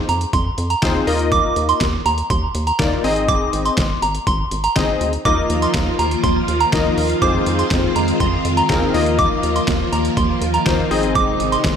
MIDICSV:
0, 0, Header, 1, 6, 480
1, 0, Start_track
1, 0, Tempo, 491803
1, 1286, Time_signature, 4, 2, 24, 8
1, 11482, End_track
2, 0, Start_track
2, 0, Title_t, "Synth bell"
2, 0, Program_c, 0, 98
2, 87, Note_on_c, 0, 82, 79
2, 169, Note_off_c, 0, 82, 0
2, 326, Note_on_c, 0, 84, 85
2, 409, Note_off_c, 0, 84, 0
2, 685, Note_on_c, 0, 82, 84
2, 768, Note_off_c, 0, 82, 0
2, 1288, Note_on_c, 0, 86, 116
2, 1452, Note_off_c, 0, 86, 0
2, 1648, Note_on_c, 0, 84, 76
2, 1812, Note_off_c, 0, 84, 0
2, 2007, Note_on_c, 0, 82, 86
2, 2089, Note_off_c, 0, 82, 0
2, 2247, Note_on_c, 0, 84, 82
2, 2329, Note_off_c, 0, 84, 0
2, 2606, Note_on_c, 0, 82, 85
2, 2771, Note_off_c, 0, 82, 0
2, 3206, Note_on_c, 0, 86, 105
2, 3371, Note_off_c, 0, 86, 0
2, 3567, Note_on_c, 0, 84, 75
2, 3732, Note_off_c, 0, 84, 0
2, 3927, Note_on_c, 0, 82, 74
2, 4009, Note_off_c, 0, 82, 0
2, 4168, Note_on_c, 0, 84, 84
2, 4250, Note_off_c, 0, 84, 0
2, 4527, Note_on_c, 0, 82, 80
2, 4609, Note_off_c, 0, 82, 0
2, 5126, Note_on_c, 0, 86, 111
2, 5291, Note_off_c, 0, 86, 0
2, 5487, Note_on_c, 0, 84, 76
2, 5652, Note_off_c, 0, 84, 0
2, 5846, Note_on_c, 0, 82, 84
2, 5928, Note_off_c, 0, 82, 0
2, 6086, Note_on_c, 0, 84, 81
2, 6169, Note_off_c, 0, 84, 0
2, 6446, Note_on_c, 0, 82, 84
2, 6611, Note_off_c, 0, 82, 0
2, 7045, Note_on_c, 0, 86, 105
2, 7211, Note_off_c, 0, 86, 0
2, 7407, Note_on_c, 0, 84, 76
2, 7572, Note_off_c, 0, 84, 0
2, 7766, Note_on_c, 0, 82, 75
2, 7849, Note_off_c, 0, 82, 0
2, 8007, Note_on_c, 0, 84, 86
2, 8089, Note_off_c, 0, 84, 0
2, 8366, Note_on_c, 0, 82, 85
2, 8449, Note_off_c, 0, 82, 0
2, 8967, Note_on_c, 0, 86, 111
2, 9132, Note_off_c, 0, 86, 0
2, 9328, Note_on_c, 0, 84, 77
2, 9492, Note_off_c, 0, 84, 0
2, 9687, Note_on_c, 0, 82, 82
2, 9769, Note_off_c, 0, 82, 0
2, 9926, Note_on_c, 0, 84, 81
2, 10009, Note_off_c, 0, 84, 0
2, 10286, Note_on_c, 0, 82, 84
2, 10451, Note_off_c, 0, 82, 0
2, 10886, Note_on_c, 0, 86, 108
2, 11051, Note_off_c, 0, 86, 0
2, 11245, Note_on_c, 0, 84, 75
2, 11411, Note_off_c, 0, 84, 0
2, 11482, End_track
3, 0, Start_track
3, 0, Title_t, "Synth keys"
3, 0, Program_c, 1, 88
3, 806, Note_on_c, 1, 60, 89
3, 806, Note_on_c, 1, 63, 83
3, 806, Note_on_c, 1, 65, 83
3, 806, Note_on_c, 1, 68, 84
3, 806, Note_on_c, 1, 72, 101
3, 1033, Note_off_c, 1, 63, 0
3, 1033, Note_off_c, 1, 65, 0
3, 1044, Note_on_c, 1, 58, 92
3, 1044, Note_on_c, 1, 63, 84
3, 1044, Note_on_c, 1, 70, 86
3, 1044, Note_on_c, 1, 75, 99
3, 1045, Note_on_c, 1, 65, 86
3, 1046, Note_off_c, 1, 60, 0
3, 1046, Note_off_c, 1, 68, 0
3, 1046, Note_off_c, 1, 72, 0
3, 1813, Note_off_c, 1, 58, 0
3, 1813, Note_off_c, 1, 63, 0
3, 1813, Note_off_c, 1, 70, 0
3, 1813, Note_off_c, 1, 75, 0
3, 1814, Note_off_c, 1, 65, 0
3, 2726, Note_on_c, 1, 58, 88
3, 2726, Note_on_c, 1, 63, 81
3, 2726, Note_on_c, 1, 65, 81
3, 2726, Note_on_c, 1, 70, 79
3, 2726, Note_on_c, 1, 74, 98
3, 2955, Note_off_c, 1, 63, 0
3, 2966, Note_off_c, 1, 58, 0
3, 2966, Note_off_c, 1, 65, 0
3, 2966, Note_off_c, 1, 70, 0
3, 2966, Note_off_c, 1, 74, 0
3, 2967, Note_on_c, 1, 60, 91
3, 2967, Note_on_c, 1, 63, 86
3, 2967, Note_on_c, 1, 68, 82
3, 2967, Note_on_c, 1, 72, 86
3, 2967, Note_on_c, 1, 75, 102
3, 3734, Note_off_c, 1, 60, 0
3, 3734, Note_off_c, 1, 68, 0
3, 3735, Note_off_c, 1, 63, 0
3, 3735, Note_off_c, 1, 72, 0
3, 3735, Note_off_c, 1, 75, 0
3, 4646, Note_on_c, 1, 60, 86
3, 4646, Note_on_c, 1, 63, 82
3, 4646, Note_on_c, 1, 68, 81
3, 4646, Note_on_c, 1, 72, 78
3, 4647, Note_on_c, 1, 75, 100
3, 4995, Note_off_c, 1, 60, 0
3, 4995, Note_off_c, 1, 63, 0
3, 4995, Note_off_c, 1, 72, 0
3, 4996, Note_off_c, 1, 68, 0
3, 4996, Note_off_c, 1, 75, 0
3, 5127, Note_on_c, 1, 63, 83
3, 5127, Note_on_c, 1, 65, 80
3, 5127, Note_on_c, 1, 70, 80
3, 5128, Note_on_c, 1, 58, 89
3, 5128, Note_on_c, 1, 75, 95
3, 5825, Note_off_c, 1, 58, 0
3, 5825, Note_off_c, 1, 63, 0
3, 5825, Note_off_c, 1, 65, 0
3, 5825, Note_off_c, 1, 70, 0
3, 5825, Note_off_c, 1, 75, 0
3, 6567, Note_on_c, 1, 63, 83
3, 6567, Note_on_c, 1, 70, 80
3, 6568, Note_on_c, 1, 58, 88
3, 6568, Note_on_c, 1, 65, 81
3, 6568, Note_on_c, 1, 75, 96
3, 6916, Note_off_c, 1, 58, 0
3, 6916, Note_off_c, 1, 63, 0
3, 6916, Note_off_c, 1, 65, 0
3, 6916, Note_off_c, 1, 70, 0
3, 6916, Note_off_c, 1, 75, 0
3, 7046, Note_on_c, 1, 60, 85
3, 7046, Note_on_c, 1, 63, 79
3, 7046, Note_on_c, 1, 65, 80
3, 7046, Note_on_c, 1, 68, 82
3, 7046, Note_on_c, 1, 72, 98
3, 7744, Note_off_c, 1, 60, 0
3, 7744, Note_off_c, 1, 68, 0
3, 7744, Note_off_c, 1, 72, 0
3, 7745, Note_off_c, 1, 63, 0
3, 7745, Note_off_c, 1, 65, 0
3, 8485, Note_on_c, 1, 60, 90
3, 8485, Note_on_c, 1, 63, 82
3, 8485, Note_on_c, 1, 65, 82
3, 8485, Note_on_c, 1, 70, 99
3, 8486, Note_on_c, 1, 68, 83
3, 8715, Note_off_c, 1, 63, 0
3, 8715, Note_off_c, 1, 65, 0
3, 8715, Note_off_c, 1, 70, 0
3, 8726, Note_off_c, 1, 60, 0
3, 8726, Note_off_c, 1, 68, 0
3, 8726, Note_on_c, 1, 63, 82
3, 8726, Note_on_c, 1, 70, 84
3, 8727, Note_on_c, 1, 58, 93
3, 8727, Note_on_c, 1, 65, 83
3, 8727, Note_on_c, 1, 75, 101
3, 9494, Note_off_c, 1, 63, 0
3, 9494, Note_off_c, 1, 70, 0
3, 9495, Note_off_c, 1, 58, 0
3, 9495, Note_off_c, 1, 65, 0
3, 9495, Note_off_c, 1, 75, 0
3, 10407, Note_on_c, 1, 63, 82
3, 10407, Note_on_c, 1, 65, 83
3, 10407, Note_on_c, 1, 70, 82
3, 10407, Note_on_c, 1, 72, 100
3, 10408, Note_on_c, 1, 58, 93
3, 10635, Note_off_c, 1, 63, 0
3, 10635, Note_off_c, 1, 72, 0
3, 10647, Note_off_c, 1, 58, 0
3, 10647, Note_off_c, 1, 65, 0
3, 10647, Note_off_c, 1, 70, 0
3, 10647, Note_on_c, 1, 60, 93
3, 10647, Note_on_c, 1, 63, 84
3, 10647, Note_on_c, 1, 68, 85
3, 10647, Note_on_c, 1, 72, 86
3, 10647, Note_on_c, 1, 75, 101
3, 11414, Note_off_c, 1, 68, 0
3, 11414, Note_off_c, 1, 75, 0
3, 11415, Note_off_c, 1, 60, 0
3, 11415, Note_off_c, 1, 63, 0
3, 11415, Note_off_c, 1, 72, 0
3, 11482, End_track
4, 0, Start_track
4, 0, Title_t, "String machine"
4, 0, Program_c, 2, 50
4, 5126, Note_on_c, 2, 65, 92
4, 5127, Note_on_c, 2, 51, 81
4, 5127, Note_on_c, 2, 53, 73
4, 5127, Note_on_c, 2, 58, 77
4, 7027, Note_off_c, 2, 53, 0
4, 7027, Note_off_c, 2, 58, 0
4, 7048, Note_on_c, 2, 60, 76
4, 7049, Note_on_c, 2, 56, 76
4, 8710, Note_off_c, 2, 60, 0
4, 8711, Note_off_c, 2, 56, 0
4, 8723, Note_on_c, 2, 58, 73
4, 8725, Note_on_c, 2, 53, 74
4, 10607, Note_off_c, 2, 51, 0
4, 10607, Note_off_c, 2, 65, 0
4, 10626, Note_off_c, 2, 53, 0
4, 10626, Note_off_c, 2, 58, 0
4, 10647, Note_on_c, 2, 56, 74
4, 10648, Note_on_c, 2, 48, 80
4, 10648, Note_on_c, 2, 51, 72
4, 10648, Note_on_c, 2, 63, 84
4, 11482, Note_off_c, 2, 48, 0
4, 11482, Note_off_c, 2, 51, 0
4, 11482, Note_off_c, 2, 56, 0
4, 11482, Note_off_c, 2, 63, 0
4, 11482, End_track
5, 0, Start_track
5, 0, Title_t, "Analog synth bass"
5, 0, Program_c, 3, 38
5, 84, Note_on_c, 3, 41, 96
5, 253, Note_off_c, 3, 41, 0
5, 325, Note_on_c, 3, 41, 109
5, 493, Note_off_c, 3, 41, 0
5, 566, Note_on_c, 3, 41, 103
5, 734, Note_off_c, 3, 41, 0
5, 807, Note_on_c, 3, 39, 95
5, 975, Note_off_c, 3, 39, 0
5, 1046, Note_on_c, 3, 39, 99
5, 1382, Note_off_c, 3, 39, 0
5, 1526, Note_on_c, 3, 39, 99
5, 1694, Note_off_c, 3, 39, 0
5, 1765, Note_on_c, 3, 39, 110
5, 1934, Note_off_c, 3, 39, 0
5, 2005, Note_on_c, 3, 39, 99
5, 2174, Note_off_c, 3, 39, 0
5, 2246, Note_on_c, 3, 39, 110
5, 2414, Note_off_c, 3, 39, 0
5, 2487, Note_on_c, 3, 39, 104
5, 2654, Note_off_c, 3, 39, 0
5, 2728, Note_on_c, 3, 39, 95
5, 2896, Note_off_c, 3, 39, 0
5, 2966, Note_on_c, 3, 32, 100
5, 3302, Note_off_c, 3, 32, 0
5, 3446, Note_on_c, 3, 32, 102
5, 3614, Note_off_c, 3, 32, 0
5, 3685, Note_on_c, 3, 32, 110
5, 3854, Note_off_c, 3, 32, 0
5, 3926, Note_on_c, 3, 32, 106
5, 4094, Note_off_c, 3, 32, 0
5, 4166, Note_on_c, 3, 32, 116
5, 4334, Note_off_c, 3, 32, 0
5, 4406, Note_on_c, 3, 32, 99
5, 4574, Note_off_c, 3, 32, 0
5, 4648, Note_on_c, 3, 32, 97
5, 4816, Note_off_c, 3, 32, 0
5, 4887, Note_on_c, 3, 38, 98
5, 5055, Note_off_c, 3, 38, 0
5, 5127, Note_on_c, 3, 39, 105
5, 5295, Note_off_c, 3, 39, 0
5, 5366, Note_on_c, 3, 39, 103
5, 5534, Note_off_c, 3, 39, 0
5, 5605, Note_on_c, 3, 39, 105
5, 5774, Note_off_c, 3, 39, 0
5, 5845, Note_on_c, 3, 39, 103
5, 6014, Note_off_c, 3, 39, 0
5, 6086, Note_on_c, 3, 39, 109
5, 6254, Note_off_c, 3, 39, 0
5, 6326, Note_on_c, 3, 39, 101
5, 6494, Note_off_c, 3, 39, 0
5, 6568, Note_on_c, 3, 38, 100
5, 6735, Note_off_c, 3, 38, 0
5, 6806, Note_on_c, 3, 39, 96
5, 6974, Note_off_c, 3, 39, 0
5, 7046, Note_on_c, 3, 41, 105
5, 7214, Note_off_c, 3, 41, 0
5, 7287, Note_on_c, 3, 41, 102
5, 7454, Note_off_c, 3, 41, 0
5, 7525, Note_on_c, 3, 41, 109
5, 7693, Note_off_c, 3, 41, 0
5, 7766, Note_on_c, 3, 41, 96
5, 7934, Note_off_c, 3, 41, 0
5, 8006, Note_on_c, 3, 41, 111
5, 8174, Note_off_c, 3, 41, 0
5, 8246, Note_on_c, 3, 41, 106
5, 8414, Note_off_c, 3, 41, 0
5, 8488, Note_on_c, 3, 39, 97
5, 8656, Note_off_c, 3, 39, 0
5, 8727, Note_on_c, 3, 39, 99
5, 9062, Note_off_c, 3, 39, 0
5, 9207, Note_on_c, 3, 39, 102
5, 9374, Note_off_c, 3, 39, 0
5, 9446, Note_on_c, 3, 39, 110
5, 9614, Note_off_c, 3, 39, 0
5, 9686, Note_on_c, 3, 39, 100
5, 9854, Note_off_c, 3, 39, 0
5, 9926, Note_on_c, 3, 39, 108
5, 10094, Note_off_c, 3, 39, 0
5, 10166, Note_on_c, 3, 39, 100
5, 10334, Note_off_c, 3, 39, 0
5, 10408, Note_on_c, 3, 39, 94
5, 10575, Note_off_c, 3, 39, 0
5, 10646, Note_on_c, 3, 32, 102
5, 10982, Note_off_c, 3, 32, 0
5, 11126, Note_on_c, 3, 32, 103
5, 11294, Note_off_c, 3, 32, 0
5, 11366, Note_on_c, 3, 32, 113
5, 11482, Note_off_c, 3, 32, 0
5, 11482, End_track
6, 0, Start_track
6, 0, Title_t, "Drums"
6, 86, Note_on_c, 9, 42, 79
6, 184, Note_off_c, 9, 42, 0
6, 205, Note_on_c, 9, 42, 57
6, 303, Note_off_c, 9, 42, 0
6, 325, Note_on_c, 9, 36, 102
6, 325, Note_on_c, 9, 42, 78
6, 422, Note_off_c, 9, 42, 0
6, 423, Note_off_c, 9, 36, 0
6, 565, Note_on_c, 9, 42, 75
6, 662, Note_off_c, 9, 42, 0
6, 685, Note_on_c, 9, 42, 55
6, 783, Note_off_c, 9, 42, 0
6, 804, Note_on_c, 9, 38, 124
6, 804, Note_on_c, 9, 39, 103
6, 804, Note_on_c, 9, 42, 88
6, 807, Note_on_c, 9, 36, 109
6, 902, Note_off_c, 9, 38, 0
6, 902, Note_off_c, 9, 39, 0
6, 902, Note_off_c, 9, 42, 0
6, 905, Note_off_c, 9, 36, 0
6, 1048, Note_on_c, 9, 46, 76
6, 1146, Note_off_c, 9, 46, 0
6, 1165, Note_on_c, 9, 42, 51
6, 1262, Note_off_c, 9, 42, 0
6, 1285, Note_on_c, 9, 36, 114
6, 1285, Note_on_c, 9, 42, 76
6, 1383, Note_off_c, 9, 36, 0
6, 1383, Note_off_c, 9, 42, 0
6, 1525, Note_on_c, 9, 42, 75
6, 1623, Note_off_c, 9, 42, 0
6, 1647, Note_on_c, 9, 42, 58
6, 1745, Note_off_c, 9, 42, 0
6, 1765, Note_on_c, 9, 36, 116
6, 1765, Note_on_c, 9, 42, 79
6, 1766, Note_on_c, 9, 38, 124
6, 1766, Note_on_c, 9, 39, 100
6, 1862, Note_off_c, 9, 36, 0
6, 1863, Note_off_c, 9, 42, 0
6, 1864, Note_off_c, 9, 38, 0
6, 1864, Note_off_c, 9, 39, 0
6, 2007, Note_on_c, 9, 42, 81
6, 2105, Note_off_c, 9, 42, 0
6, 2125, Note_on_c, 9, 42, 57
6, 2223, Note_off_c, 9, 42, 0
6, 2246, Note_on_c, 9, 36, 101
6, 2246, Note_on_c, 9, 42, 79
6, 2344, Note_off_c, 9, 36, 0
6, 2344, Note_off_c, 9, 42, 0
6, 2485, Note_on_c, 9, 42, 72
6, 2583, Note_off_c, 9, 42, 0
6, 2606, Note_on_c, 9, 42, 56
6, 2703, Note_off_c, 9, 42, 0
6, 2725, Note_on_c, 9, 38, 127
6, 2725, Note_on_c, 9, 39, 102
6, 2725, Note_on_c, 9, 42, 87
6, 2728, Note_on_c, 9, 36, 115
6, 2823, Note_off_c, 9, 38, 0
6, 2823, Note_off_c, 9, 39, 0
6, 2823, Note_off_c, 9, 42, 0
6, 2826, Note_off_c, 9, 36, 0
6, 2969, Note_on_c, 9, 46, 78
6, 3067, Note_off_c, 9, 46, 0
6, 3086, Note_on_c, 9, 42, 51
6, 3183, Note_off_c, 9, 42, 0
6, 3206, Note_on_c, 9, 36, 112
6, 3206, Note_on_c, 9, 42, 79
6, 3304, Note_off_c, 9, 36, 0
6, 3304, Note_off_c, 9, 42, 0
6, 3447, Note_on_c, 9, 42, 74
6, 3544, Note_off_c, 9, 42, 0
6, 3567, Note_on_c, 9, 42, 58
6, 3665, Note_off_c, 9, 42, 0
6, 3685, Note_on_c, 9, 36, 122
6, 3685, Note_on_c, 9, 42, 78
6, 3686, Note_on_c, 9, 38, 125
6, 3686, Note_on_c, 9, 39, 99
6, 3783, Note_off_c, 9, 36, 0
6, 3783, Note_off_c, 9, 42, 0
6, 3784, Note_off_c, 9, 38, 0
6, 3784, Note_off_c, 9, 39, 0
6, 3928, Note_on_c, 9, 42, 80
6, 4025, Note_off_c, 9, 42, 0
6, 4047, Note_on_c, 9, 42, 56
6, 4144, Note_off_c, 9, 42, 0
6, 4166, Note_on_c, 9, 36, 102
6, 4166, Note_on_c, 9, 42, 77
6, 4264, Note_off_c, 9, 36, 0
6, 4264, Note_off_c, 9, 42, 0
6, 4406, Note_on_c, 9, 42, 76
6, 4503, Note_off_c, 9, 42, 0
6, 4526, Note_on_c, 9, 42, 57
6, 4624, Note_off_c, 9, 42, 0
6, 4646, Note_on_c, 9, 38, 127
6, 4646, Note_on_c, 9, 39, 103
6, 4647, Note_on_c, 9, 42, 89
6, 4648, Note_on_c, 9, 36, 111
6, 4744, Note_off_c, 9, 38, 0
6, 4744, Note_off_c, 9, 39, 0
6, 4744, Note_off_c, 9, 42, 0
6, 4746, Note_off_c, 9, 36, 0
6, 4890, Note_on_c, 9, 42, 75
6, 4987, Note_off_c, 9, 42, 0
6, 5006, Note_on_c, 9, 42, 54
6, 5104, Note_off_c, 9, 42, 0
6, 5127, Note_on_c, 9, 36, 112
6, 5127, Note_on_c, 9, 42, 74
6, 5224, Note_off_c, 9, 36, 0
6, 5224, Note_off_c, 9, 42, 0
6, 5367, Note_on_c, 9, 42, 75
6, 5464, Note_off_c, 9, 42, 0
6, 5488, Note_on_c, 9, 42, 57
6, 5586, Note_off_c, 9, 42, 0
6, 5605, Note_on_c, 9, 36, 118
6, 5606, Note_on_c, 9, 42, 84
6, 5607, Note_on_c, 9, 38, 120
6, 5607, Note_on_c, 9, 39, 101
6, 5703, Note_off_c, 9, 36, 0
6, 5703, Note_off_c, 9, 42, 0
6, 5705, Note_off_c, 9, 38, 0
6, 5705, Note_off_c, 9, 39, 0
6, 5848, Note_on_c, 9, 42, 80
6, 5945, Note_off_c, 9, 42, 0
6, 5967, Note_on_c, 9, 42, 55
6, 6064, Note_off_c, 9, 42, 0
6, 6086, Note_on_c, 9, 36, 104
6, 6087, Note_on_c, 9, 42, 78
6, 6184, Note_off_c, 9, 36, 0
6, 6184, Note_off_c, 9, 42, 0
6, 6326, Note_on_c, 9, 42, 74
6, 6424, Note_off_c, 9, 42, 0
6, 6446, Note_on_c, 9, 42, 55
6, 6544, Note_off_c, 9, 42, 0
6, 6566, Note_on_c, 9, 38, 123
6, 6566, Note_on_c, 9, 39, 102
6, 6566, Note_on_c, 9, 42, 91
6, 6568, Note_on_c, 9, 36, 114
6, 6663, Note_off_c, 9, 38, 0
6, 6663, Note_off_c, 9, 39, 0
6, 6663, Note_off_c, 9, 42, 0
6, 6666, Note_off_c, 9, 36, 0
6, 6809, Note_on_c, 9, 46, 76
6, 6906, Note_off_c, 9, 46, 0
6, 6925, Note_on_c, 9, 42, 54
6, 7023, Note_off_c, 9, 42, 0
6, 7045, Note_on_c, 9, 42, 75
6, 7046, Note_on_c, 9, 36, 108
6, 7143, Note_off_c, 9, 36, 0
6, 7143, Note_off_c, 9, 42, 0
6, 7285, Note_on_c, 9, 42, 74
6, 7383, Note_off_c, 9, 42, 0
6, 7407, Note_on_c, 9, 42, 58
6, 7504, Note_off_c, 9, 42, 0
6, 7525, Note_on_c, 9, 36, 124
6, 7525, Note_on_c, 9, 42, 82
6, 7526, Note_on_c, 9, 38, 127
6, 7526, Note_on_c, 9, 39, 101
6, 7622, Note_off_c, 9, 36, 0
6, 7622, Note_off_c, 9, 42, 0
6, 7624, Note_off_c, 9, 38, 0
6, 7624, Note_off_c, 9, 39, 0
6, 7767, Note_on_c, 9, 42, 81
6, 7865, Note_off_c, 9, 42, 0
6, 7886, Note_on_c, 9, 42, 57
6, 7983, Note_off_c, 9, 42, 0
6, 8006, Note_on_c, 9, 36, 99
6, 8006, Note_on_c, 9, 42, 76
6, 8103, Note_off_c, 9, 36, 0
6, 8103, Note_off_c, 9, 42, 0
6, 8246, Note_on_c, 9, 42, 75
6, 8343, Note_off_c, 9, 42, 0
6, 8366, Note_on_c, 9, 42, 58
6, 8464, Note_off_c, 9, 42, 0
6, 8486, Note_on_c, 9, 38, 126
6, 8486, Note_on_c, 9, 39, 104
6, 8486, Note_on_c, 9, 42, 87
6, 8488, Note_on_c, 9, 36, 116
6, 8583, Note_off_c, 9, 38, 0
6, 8583, Note_off_c, 9, 39, 0
6, 8583, Note_off_c, 9, 42, 0
6, 8586, Note_off_c, 9, 36, 0
6, 8730, Note_on_c, 9, 46, 75
6, 8827, Note_off_c, 9, 46, 0
6, 8846, Note_on_c, 9, 42, 54
6, 8944, Note_off_c, 9, 42, 0
6, 8966, Note_on_c, 9, 36, 111
6, 8966, Note_on_c, 9, 42, 78
6, 9064, Note_off_c, 9, 36, 0
6, 9064, Note_off_c, 9, 42, 0
6, 9207, Note_on_c, 9, 42, 75
6, 9304, Note_off_c, 9, 42, 0
6, 9328, Note_on_c, 9, 42, 59
6, 9426, Note_off_c, 9, 42, 0
6, 9445, Note_on_c, 9, 36, 121
6, 9446, Note_on_c, 9, 42, 80
6, 9447, Note_on_c, 9, 38, 119
6, 9447, Note_on_c, 9, 39, 102
6, 9543, Note_off_c, 9, 36, 0
6, 9544, Note_off_c, 9, 42, 0
6, 9545, Note_off_c, 9, 38, 0
6, 9545, Note_off_c, 9, 39, 0
6, 9688, Note_on_c, 9, 42, 82
6, 9786, Note_off_c, 9, 42, 0
6, 9807, Note_on_c, 9, 42, 57
6, 9904, Note_off_c, 9, 42, 0
6, 9926, Note_on_c, 9, 36, 99
6, 9926, Note_on_c, 9, 42, 76
6, 10024, Note_off_c, 9, 36, 0
6, 10024, Note_off_c, 9, 42, 0
6, 10166, Note_on_c, 9, 42, 74
6, 10263, Note_off_c, 9, 42, 0
6, 10286, Note_on_c, 9, 42, 56
6, 10384, Note_off_c, 9, 42, 0
6, 10405, Note_on_c, 9, 38, 124
6, 10405, Note_on_c, 9, 39, 99
6, 10405, Note_on_c, 9, 42, 87
6, 10408, Note_on_c, 9, 36, 112
6, 10503, Note_off_c, 9, 38, 0
6, 10503, Note_off_c, 9, 39, 0
6, 10503, Note_off_c, 9, 42, 0
6, 10506, Note_off_c, 9, 36, 0
6, 10649, Note_on_c, 9, 46, 74
6, 10746, Note_off_c, 9, 46, 0
6, 10766, Note_on_c, 9, 42, 54
6, 10863, Note_off_c, 9, 42, 0
6, 10886, Note_on_c, 9, 36, 115
6, 10886, Note_on_c, 9, 42, 77
6, 10984, Note_off_c, 9, 36, 0
6, 10984, Note_off_c, 9, 42, 0
6, 11126, Note_on_c, 9, 42, 72
6, 11224, Note_off_c, 9, 42, 0
6, 11248, Note_on_c, 9, 42, 59
6, 11345, Note_off_c, 9, 42, 0
6, 11365, Note_on_c, 9, 36, 125
6, 11365, Note_on_c, 9, 42, 82
6, 11367, Note_on_c, 9, 38, 123
6, 11367, Note_on_c, 9, 39, 101
6, 11463, Note_off_c, 9, 36, 0
6, 11463, Note_off_c, 9, 42, 0
6, 11464, Note_off_c, 9, 38, 0
6, 11464, Note_off_c, 9, 39, 0
6, 11482, End_track
0, 0, End_of_file